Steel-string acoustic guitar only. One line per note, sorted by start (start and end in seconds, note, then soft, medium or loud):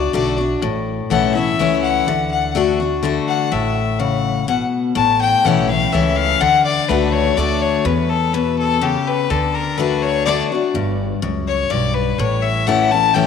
0.00 0.14 D4 medium
0.00 0.13 F#4 medium
0.13 0.37 D3 medium
0.13 0.38 A3 loud
0.13 0.38 D4 medium
0.13 0.37 F#4 loud
0.38 0.63 D4 soft
0.38 0.61 F#4 medium
0.62 1.54 A2 medium
1.10 1.34 E3 medium
1.10 1.35 A3 loud
1.10 1.35 C#4 loud
1.10 1.34 E4 loud
1.35 1.59 C#4 medium
1.35 1.58 E4 medium
1.59 2.05 E3 medium
1.59 2.05 A3 medium
1.59 2.06 C#4 medium
1.59 2.06 E4 loud
2.08 2.54 D3 medium
2.55 2.79 D3 loud
2.55 2.79 A3 loud
2.55 2.79 D4 medium
2.55 2.79 F#4 loud
2.80 3.03 D4 medium
2.80 3.03 F#4 medium
3.03 3.49 D3 medium
3.03 3.49 A3 medium
3.03 3.50 D4 medium
3.03 3.50 F#4 loud
3.52 4.43 A2 medium
4.00 4.46 C#3 medium
4.48 4.94 B2 medium
4.95 5.87 A2 loud
5.45 5.68 E3 medium
5.45 5.69 A3 loud
5.45 5.69 C#4 loud
5.45 5.68 E4 loud
5.69 5.93 C#4 soft
5.69 5.92 E4 medium
5.92 6.38 E3 medium
5.92 6.39 A3 medium
5.92 6.39 C#4 loud
5.92 6.40 E4 medium
6.41 7.32 D3 loud
6.89 7.35 A3 loud
6.89 7.35 D4 medium
6.89 7.36 F#4 loud
7.37 7.83 D3 medium
7.37 7.83 A3 loud
7.37 7.84 D4 loud
7.37 7.84 F#4 loud
7.85 8.77 E2 loud
8.34 8.80 B2 medium
8.81 9.27 C#3 loud
9.30 9.77 D3 loud
9.78 10.24 D3 medium
9.78 10.24 A3 medium
9.78 10.25 D4 medium
9.78 10.25 F#4 loud
10.26 10.50 D3 medium
10.26 10.50 A3 medium
10.26 10.51 D4 loud
10.26 10.51 F#4 loud
10.52 10.75 D4 medium
10.52 10.74 F#4 medium
10.75 11.22 G2 medium
11.22 11.68 F#2 medium
11.70 12.16 G2 medium
12.19 13.11 A2 loud
12.67 12.90 E3 medium
12.67 12.91 A3 medium
12.67 12.91 C#4 medium
12.67 12.90 E4 loud
12.92 13.15 C#4 medium
12.92 13.14 E4 medium
13.15 13.27 E3 medium
13.15 13.27 A3 loud
13.15 13.27 C#4 medium
13.15 13.27 E4 loud